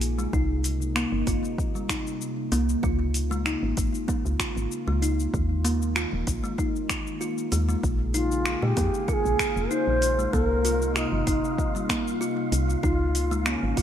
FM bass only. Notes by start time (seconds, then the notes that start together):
Already playing: A#1
0.33 C2
1.12 G1
1.27 G1
2.52 C2
2.84 C#2
3.63 G#1
3.78 G#1
4.25 C#2
4.56 G#1
4.88 C#2
5.34 D#2
6.13 D#1
6.27 A#1
7.52 D#2
7.84 A#1
8.63 A#2
8.77 F2
9.25 A#1
9.56 F1
9.87 A#1
10.33 C2
11.12 G1
11.27 G1
12.52 C2
12.84 C#2
13.63 G#1
13.77 G#1